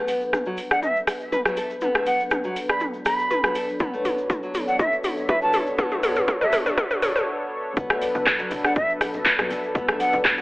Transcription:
Already playing: F#3 B3 D4 A4 B4
0.08 B3, open hi-hat, shaker
0.21 shaker
0.33 cross-stick, mid tom, shaker
0.45 F#3, shaker
0.57 open hi-hat, shaker
0.71 D4 F#5, cross-stick, shaker
0.82 E5, mid tom, shaker
0.96 shaker
1.07 cross-stick, open hi-hat, shaker
1.20 shaker
1.32 B4, mid tom, shaker
1.45 F#3, cross-stick, shaker
1.57 A4, open hi-hat, shaker
1.70 shaker
1.81 B3, mid tom, shaker
1.95 A3, cross-stick, shaker
2.06 B3 F#5, open hi-hat, shaker
2.20 shaker
2.31 cross-stick, mid tom, shaker
2.44 F#3, shaker
2.56 open hi-hat, shaker
2.69 D4 B5, cross-stick, shaker
2.80 mid tom, shaker
2.94 shaker
3.05 B5, cross-stick, open hi-hat, shaker
3.19 shaker
3.30 B4, mid tom, shaker
3.44 F#3, cross-stick, shaker
3.55 A4, open hi-hat, shaker
3.69 shaker
3.80 B3 C#5, kick, mid tom, shaker
3.93 A3, shaker
4.05 B3, open hi-hat, mid tom, shaker
4.18 shaker
4.30 kick, mid tom, shaker
4.43 F#3, shaker
4.54 open hi-hat, mid tom, shaker
4.68 D4 F#5, shaker
4.79 E5, kick, mid tom, shaker
4.92 shaker
5.04 open hi-hat, mid tom, shaker
5.17 shaker
5.29 B4 E5, kick, mid tom, shaker
5.42 F#3 A5, shaker
5.53 A4, open hi-hat, mid tom, shaker
5.67 shaker
5.78 B3, kick, mid tom, shaker
5.91 A3, mid tom, shaker
6.03 B3, open hi-hat, mid tom, shaker
6.16 mid tom, shaker
6.28 kick, mid tom, shaker
6.41 F#3 E5, mid tom, shaker
6.52 open hi-hat, mid tom, shaker
6.66 D4, mid tom, shaker
6.77 kick, mid tom, shaker
6.90 mid tom, shaker
7.02 open hi-hat, mid tom, shaker
7.16 mid tom, shaker
7.77 B1 F#3 B3 D4 A4 B4, kick, high conga, shaker
7.90 A3, cross-stick, muted conga, shaker
8.02 B3, open hi-hat, shaker
8.15 F#1, muted conga, high conga, low conga, shaker
8.26 kick, cross-stick, clap, low conga, shaker
8.39 F#3, muted conga, shaker
8.51 B1, open hi-hat, high conga, shaker
8.64 D4 F#5, cross-stick, muted conga, shaker
8.76 E5, kick, high conga, shaker
8.90 shaker
9.01 B1, cross-stick, open hi-hat, muted conga, shaker
9.13 low conga, shaker
9.25 B4, kick, clap, muted conga, shaker
9.39 B1 F#3, cross-stick, low conga, shaker
9.50 A4, open hi-hat, muted conga, high conga, shaker
9.64 shaker
9.75 B1 B3, kick, high conga, shaker
9.88 A3, cross-stick, muted conga, shaker
10.00 B3 F#5, open hi-hat, shaker
10.13 F#1, muted conga, high conga, low conga, shaker
10.24 kick, cross-stick, clap, low conga, shaker
10.38 F#3, muted conga, shaker

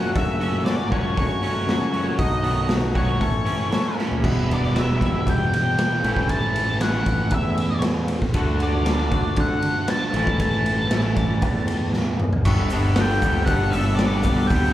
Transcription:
Already playing: F#1 F#2 C#3 F#3 A3 C#4 F#4
0.15 F#2 C#3 F#3 A3 C#4 F#4 E5, kick, open hi-hat
0.41 F#3 A3 C#4 F#4, open hi-hat
0.65 F#3 A3 C#4 F#4 D5, snare, open hi-hat
0.92 C#2 F#2 C#3 F#3 A3 C#4 F#4 C#5, kick, open hi-hat
1.17 F#1 F#3 A3 C#4 C#5, kick, open hi-hat
1.22 F#4
1.43 F#3 A3 C#4 F#4, open hi-hat
1.67 F#2 C#3 F#3 A3 C#4 F#4, snare, open hi-hat
1.92 F#3 A3 C#4 F#4, open hi-hat
2.19 B1 B2 F#3 A3 D#4 F#4 D#5, kick, open hi-hat
2.43 D#3 A3 B3 D#4 F#4, open hi-hat
2.68 F#3 A3 D#4 F#4, snare, open hi-hat
2.95 B1 B2 D#3 F#3 A3 B3 D#4 F#4 C#5, kick, open hi-hat
3.19 A1 A2 E3 A3 C#4 A4, kick, open hi-hat
3.45 E3 A3 C#4 E4 A4, open hi-hat
3.70 A2 E3 A3 C#4 A4, snare, open hi-hat
3.96 E3 A3 C#4 E4 A4, snare
4.12 floor tom
4.21 E1 E2 B2 E3 G3 B3, kick, crash
4.26 E4
4.51 D5, ride
4.63 snare
4.76 E5, snare, ride
4.99 E1 B2 E3 G3 B3 E4, kick, ride
5.03 E2
5.27 E2 G5, kick, ride
5.53 G5, ride
5.78 snare, ride
6.03 A1 A2 E3 A3 C#4, ride
6.07 E4
6.17 kick, snare
6.29 A5, kick, ride
6.56 ride
6.81 A2 E3 A3 C#4 E4 F#5, snare, ride
7.06 A1, kick, ride
7.31 E2 E5, kick, ride
7.58 ride
7.82 snare, ride
8.08 ride
8.22 A1, kick, snare
8.33 D2 D3 A3 D4, kick, ride
8.38 F#4
8.60 D5, ride
8.86 snare, ride
9.11 D2 D3 A3 D4 F#4, kick, ride
9.36 D3 F#5, kick, ride
9.62 ride
9.88 A5, snare, ride
10.14 A1 A2 E3 A3 C#4, ride
10.18 E4
10.27 kick
10.40 A5, kick, ride
10.66 ride
10.90 A2 E3 A3 C#4 E4, snare, ride
11.16 A1, kick, ride
11.42 E2, kick, ride
11.68 ride
11.93 snare
12.20 mid tom
12.31 A1, floor tom
12.45 G1 G2 D3 G3 B3 D4 G4 A4 C#6, kick, crash, shaker
12.70 G2 D3 G3 B3 D4 G4 A4, open hi-hat, shaker
12.96 G2 D3 G3 B3 D4 G4 G5, snare, open hi-hat, shaker
13.00 A4
13.22 D2 G2 D3 G3 B3 D4 G4 A4, kick, open hi-hat, shaker
13.46 G1 G2 D3 G3 B3 G4 F#5, kick, open hi-hat, shaker
13.50 D4 A4
13.70 G1 G2 D3 G3 G4 E5, open hi-hat, shaker
13.75 B3 D4 A4
13.96 G2 D3 D5, snare, open hi-hat, shaker
14.01 G3 B3 D4 G4 A4
14.23 B1 G2 D3 G3 B3 D4 G4 A4, kick, open hi-hat, shaker
14.47 D2 G2 D3 G3 G5, kick, open hi-hat, shaker
14.51 B3 D4 G4 A4

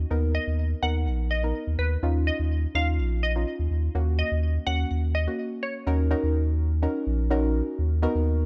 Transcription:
0.11 D#2 B3 D#4 A#4
0.35 D#5
0.47 D#2
0.83 D#2 B3 D#4 A#4 F#5
1.06 A#1
1.31 D#5
1.43 B3 D#4 A#4
1.67 D#2
1.78 D#2 B4
2.03 D#2 C#4 D#4 F4
2.27 D#5
2.39 D#2
2.75 D#2 C#4 D#4 F4 F5
2.98 A#1
3.23 D#5
3.36 C#4 D#4 F4
3.59 D#2
3.71 D#2
3.95 D#2 A#3 C#4 F#4
4.19 D#5
4.32 D#2
4.66 D#2 A#3 C#4 F#4 F#5
4.91 D#2
5.15 D#5
5.27 A#3 C#4 F#4
5.63 C#5
5.87 D#2 C#4 D#4 F#4 A#4
6.11 C#4 D#4 F#4 A#4
6.23 D#2
6.82 C#4 D#4 F#4 A#4
7.07 A#1
7.30 C#4 D#4 F#4 A#4
7.79 D#2
8.02 B3 D#4 F#4 A#4
8.15 D#2

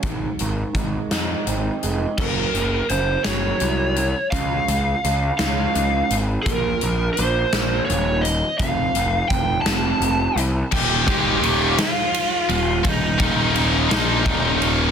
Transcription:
0.03 G#1 G#2, kick, closed hi-hat
0.39 G#1 D#3, closed hi-hat
0.74 G#1 G#3, kick, closed hi-hat
1.11 F2 D#4, snare, closed hi-hat
1.47 G#1 C4, closed hi-hat
1.83 F1 G#3, closed hi-hat
2.18 F#1 F#2 C#3 F#3 A#4, kick, crash
2.54 F#1 F#2 C#3, closed hi-hat
2.89 F#1 F#2 C#3 C5, closed hi-hat
3.24 F#1 F#2 F#3 C#5, snare, closed hi-hat
3.60 C2, closed hi-hat
3.96 F#2 C#3, closed hi-hat
4.31 C#2 C#3 G#3 C#4 F5, kick, closed hi-hat
4.68 C#2 C#3 G#3, closed hi-hat
5.04 C#2 C#3 G#3, closed hi-hat
5.38 C#2 C#3 G#3 C#4 F5, snare, closed hi-hat
5.75 C#2, closed hi-hat
6.10 G#1 C#3 G#3, closed hi-hat
6.43 A#1 A#4, kick, closed hi-hat
6.48 A#2 F3 A#3
6.81 A#1 A#2 F3, closed hi-hat
7.13 C5, closed hi-hat
7.18 A#1 A#2 F3
7.53 A#1 A#2 F3 A#3, snare, closed hi-hat
7.85 C#5
7.90 D#1, closed hi-hat
8.21 A#2 F3 D#5, closed hi-hat
8.58 F1 F2 C3 F3 F5, kick, closed hi-hat
8.95 F1 F2 C3, closed hi-hat
9.28 F1 F2 C3 G5, kick, closed hi-hat
9.62 F1 A5
9.66 F2 C3 F3, snare, closed hi-hat
10.00 F1, closed hi-hat
10.36 C2 F2 C3, closed hi-hat
10.71 D#1 D#2 A#2 D#3 G4 G5, kick, crash
11.06 G#1 G#2 D#3 G#3, kick, ride
11.42 D#1 D#2 A#2 D#3, ride
11.78 F4 F5, snare, ride
12.14 ride
12.49 D#1 D#2 A#2, ride
12.83 D#1 D#2 A#2, kick, ride
12.88 D#4 D#5
13.18 D#1 D#2 A#2 D#3, kick, ride
13.56 ride
13.89 A#1 A#2 F3 A#3, snare, ride
13.93 D#4 D#5
14.23 D#1 D#2 A#2 D#3, kick, ride
14.62 ride

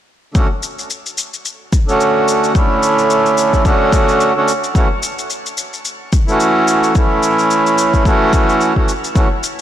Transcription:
0.34 D3 A3 C#4 F#4, kick, shaker
0.63 shaker
0.79 shaker
0.90 shaker
1.06 shaker
1.18 shaker
1.34 shaker
1.45 shaker
1.73 kick, shaker
1.87 D3 A3 C#4, shaker
1.91 F#4
2.01 shaker
2.28 shaker
2.44 shaker
2.53 D3 A3 C#4, kick, shaker
2.57 E4
2.83 shaker
2.99 shaker
3.10 shaker
3.26 shaker
3.38 shaker
3.53 kick, shaker
3.63 D3 A3 C#4, kick, shaker
3.67 F#4
3.93 kick, shaker
4.09 shaker
4.21 shaker
4.36 D3 A3 C#4 F#4
4.48 shaker
4.64 shaker
4.75 E3 A3 C#4 F#4, kick, shaker
5.03 shaker
5.19 shaker
5.30 shaker
5.46 shaker
5.58 shaker
5.73 shaker
5.85 shaker
6.13 kick, shaker
6.27 E3 A3 C#4, shaker
6.31 F#4
6.40 shaker
6.68 shaker
6.84 shaker
6.94 E3 A3 C#4, kick, shaker
6.98 E4
7.23 shaker
7.39 shaker
7.51 shaker
7.67 shaker
7.78 shaker
7.94 kick, shaker
8.03 E3 A3 C#4, kick, shaker
8.08 F#4
8.33 kick, shaker
8.49 shaker
8.61 shaker
8.76 E3 A3 C#4 F#4, kick
8.88 shaker
9.04 shaker
9.14 E3 A3 C#4 F#4, kick, shaker
9.43 shaker

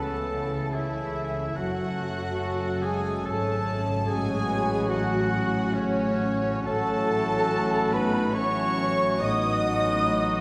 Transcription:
Already playing: C#2 C#3 E3 A3 B3 C#4 E4 F#4 A4 C#5 E5 A5
0.11 E5
0.32 E4 A5
0.73 E3 A3 E4 G#4 C#5 E5
0.96 A4
1.17 E4
1.37 C#4
1.56 F#1 F#2 F#3 A3 C#4 F#4 A4 F#5
1.78 C#4
1.98 F#4
2.20 C#5
2.40 A4
2.82 G#3 G#4 G#5 C#6
3.04 F#5
3.23 G#1 G#2 A3 C#4 G#4 A4 C#5 A5
3.46 F#4
3.67 C#4
3.87 C#3
4.06 A1 A2 G#3 C#4 F#4 G#4 G#5
4.29 C#4
4.48 B3 F#4
4.70 C#5
4.89 F#3 A3 F#4 F#5
5.32 C#4
5.74 C#3 C#4 C#5
5.96 F#4
6.20 C#4
6.43 A3
6.64 A1 A2 F#3 A3 C#4 F#4 A4 A5
6.88 C#4
7.10 E4 F#4
7.51 E4 C#5
7.91 B3 D#4 B4 A5 B5
8.33 F#3 C#4 E4 F#4 C#5 C#6
8.57 A4
8.77 A3
9.00 C#4
9.20 A1 A2 F#3 B3 D#4 F#4 D#5 D#6
9.43 B3
9.64 C#4 F#4
9.85 B4
10.06 D#4 F#4

